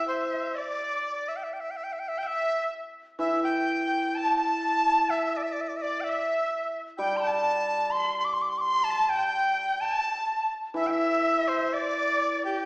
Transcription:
Already playing: E3 C5 E5
0.08 C5
0.55 D5
1.28 E5
1.36 G5
1.44 E5
1.53 G5
1.60 E5
1.71 G5
1.77 E5
1.84 G5
1.93 E5
1.99 G5
2.08 E5
2.17 G5
2.23 E5
2.27 E5
3.19 E3 E5
3.43 G5
4.15 A5
4.38 A5
5.10 E5
5.37 D5
5.43 E5
5.52 D5
5.61 E5
5.68 D5
5.77 E5
5.82 D5
6.00 E5 G5
6.09 E5
6.98 G3 G5
7.03 G5
7.17 A5 C6
7.28 A5
7.91 C6
7.99 C6
8.20 C6
8.25 D6
8.34 C6
8.42 D6
8.49 C6
8.58 C6 D6
8.67 C6
8.84 A5
8.91 A5
9.09 G5
9.16 G5
9.81 A5
10.74 E3 E5
10.80 E5
10.87 E5 G5
10.92 E5
11.48 C5
11.73 D5
12.45 G4 G5

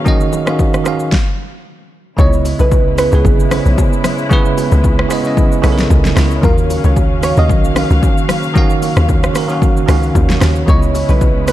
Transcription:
Already playing: D#3 F#3 A#3 C#4 F#4 G#4 F5
0.04 D#3 C#4 F#4 D#5, kick, low conga, shaker
0.20 shaker
0.33 high bongo, low bongo, shaker
0.45 D#3 C#4 F#4 F5, cross-stick, low bongo, shaker
0.59 kick, high bongo, shaker
0.74 cross-stick, shaker
0.84 D#3 C#4 F#4 F5, cross-stick, shaker
1.00 shaker
1.12 kick, snare
2.17 C#2 C#3 G#3 B3 C#4 D#4 E4 C#5 D#5, kick, low conga, shaker
2.26 E4
2.33 shaker
2.45 open hi-hat, high bongo, shaker
2.59 B1 B4, low bongo, shaker
2.71 kick, high bongo, shaker
2.86 C#2
2.96 C#3 B3 E4 B4, cross-stick, open hi-hat, shaker
3.11 C#2 C#3 B3 E4 G#4 B4, shaker
3.24 G#1, kick, low conga, shaker
3.40 shaker
3.49 C#3 B3 E4 C5, cross-stick, open hi-hat, low bongo, shaker
3.60 C#5
3.66 B1, shaker
3.78 kick, high bongo, shaker
3.93 shaker
4.04 cross-stick, open hi-hat, low conga, shaker
4.18 shaker
4.29 C#3 B3 E4 B4, kick, low conga, shaker
4.45 shaker
4.57 open hi-hat, high bongo, shaker
4.72 C#2, low bongo, shaker
4.84 kick, high bongo, shaker
4.99 cross-stick
5.09 C#3 B3 E4 D#5, cross-stick, open hi-hat, shaker
5.23 C#3 B3 E4 D#5, shaker
5.37 kick, low conga, shaker
5.52 shaker
5.62 B1 C#3 B3 E4 A4, cross-stick, open hi-hat, low bongo, shaker
5.72 A#4
5.78 snare, shaker
5.90 C#2, kick, high bongo, shaker
6.05 snare, shaker
6.15 C#2 C#3 B3 E4 G#4, cross-stick, snare, open hi-hat, low conga, shaker
6.31 shaker
6.41 D#2 D#3 F#3 A#3 C#4 F4 A#4 F5, kick, low conga, shaker
6.50 F#4
6.58 shaker
6.70 open hi-hat, high bongo, shaker
6.84 C#2 C#5, low bongo, shaker
6.96 kick, high bongo, shaker
7.11 D#2
7.21 D#3 C#4 F#4 C#5 F5, cross-stick, open hi-hat, shaker
7.36 D#2 D#3 C#4 F#4 D#5 F5, shaker
7.49 B1, kick, low conga, shaker
7.64 shaker
7.74 D#3 C#4 F#4 F5, cross-stick, open hi-hat, low bongo, shaker
7.91 C#2, shaker
8.03 kick, high bongo, shaker
8.18 shaker
8.29 cross-stick, open hi-hat, low conga, shaker
8.43 shaker
8.54 D#3 C#4 F#4 F5, kick, low conga, shaker
8.70 shaker
8.82 open hi-hat, high bongo, shaker
8.96 D#2, cross-stick, low bongo, shaker
9.09 kick, high bongo, shaker
9.23 cross-stick, shaker
9.33 D#3 C#4 F#4, cross-stick, open hi-hat, shaker
9.37 A#4
9.48 D#3 C#4 F#4 F5, shaker
9.62 kick, low conga, shaker
9.77 shaker
9.86 C#2 D#3 C#4 F#4 F5, cross-stick, open hi-hat, low bongo, shaker
10.03 shaker
10.15 D#2, kick, high bongo, shaker
10.30 snare, shaker
10.39 D#2 D#3 C#4 F#4 C#5, cross-stick, snare, open hi-hat, low conga, shaker
10.56 shaker
10.66 C#2 C#3 G#3 B3 C#4 E4 C#5 D#5, kick, low conga, shaker
10.83 shaker
10.95 open hi-hat, high bongo, shaker
11.09 B1 B4, low bongo, shaker
11.21 kick, high bongo, shaker
11.36 C#2
11.46 C#3 B3 E4 B4, cross-stick, open hi-hat, shaker

